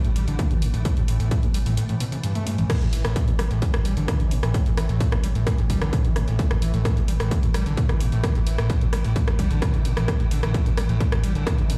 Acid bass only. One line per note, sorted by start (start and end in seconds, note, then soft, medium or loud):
0.05 0.11 A2 medium
0.16 0.26 G3 medium
0.28 0.40 D3 medium
0.39 0.52 A2 loud
0.51 0.64 E3 medium
0.62 0.69 A2 loud
0.74 0.83 A2 medium
0.85 0.92 A2 loud
0.97 1.03 A2 medium
1.08 1.18 A2 medium
1.20 1.29 A2 loud
1.31 1.45 A2 loud
1.43 1.49 B2 medium
1.54 1.58 G3 loud
1.66 1.75 A2 medium
1.77 1.84 A2 loud
1.89 1.95 A2 medium
2.00 2.04 B2 loud
2.12 2.16 C3 medium
2.24 2.33 G2 medium
2.35 2.45 A3 medium
2.47 2.56 G2 loud
2.58 2.65 A1 medium
2.70 2.76 A2 loud
2.81 2.88 A2 medium
2.93 3.03 E3 medium
3.05 3.14 A2 loud
3.16 3.29 A2 loud
3.28 3.34 B2 medium
3.39 3.43 G3 loud
3.51 3.60 A2 medium
3.62 3.69 A2 loud
3.74 3.80 A2 medium
3.85 3.95 G3 medium
3.97 4.10 D3 medium
4.08 4.21 A2 loud
4.20 4.33 E3 medium
4.31 4.38 A2 loud
4.43 4.52 A2 medium
4.54 4.61 A2 loud
4.66 4.72 A2 medium
4.77 4.87 E3 medium
4.89 4.99 A2 loud
5.00 5.14 A2 loud
5.12 5.18 B2 medium
5.24 5.27 G3 loud
5.35 5.45 A2 medium
5.47 5.53 A2 loud
5.58 5.65 A2 medium
5.70 5.79 G3 medium
5.82 5.94 D3 medium
5.93 6.06 A2 loud
6.05 6.17 E3 medium
6.16 6.22 A2 loud
6.28 6.37 A2 medium
6.39 6.45 A2 loud
6.51 6.57 A2 medium
6.62 6.72 E3 medium
6.74 6.83 A2 loud
6.85 6.98 A2 loud
6.97 7.03 B2 medium
7.08 7.12 G3 loud
7.20 7.29 A2 medium
7.31 7.38 A2 loud
7.43 7.49 A2 medium
7.54 7.64 G3 medium
7.66 7.79 D3 medium
7.77 7.91 A2 loud
7.89 8.02 E3 medium
8.00 8.07 A2 loud
8.12 8.22 A2 medium
8.24 8.30 A2 loud
8.35 8.42 A2 medium
8.47 8.56 E3 medium
8.58 8.68 A2 loud
8.70 8.83 A2 loud
8.81 8.88 B2 medium
8.93 8.97 G3 loud
9.05 9.14 A2 medium
9.16 9.22 A2 loud
9.28 9.34 A2 medium
9.39 9.49 G3 medium
9.51 9.64 D3 medium
9.62 9.75 A2 loud
9.74 9.87 E3 medium
9.85 9.92 A2 loud
9.97 10.06 A2 medium
10.08 10.15 A2 loud
10.20 10.26 A2 medium
10.31 10.41 D3 medium
10.43 10.52 A2 loud
10.54 10.68 A2 loud
10.66 10.72 B2 medium
10.77 10.81 G3 loud
10.89 10.99 A2 medium
11.00 11.07 A2 loud
11.12 11.18 A2 medium
11.24 11.33 G3 medium
11.35 11.48 D3 medium
11.47 11.60 A2 loud
11.58 11.71 E3 medium
11.70 11.76 A2 loud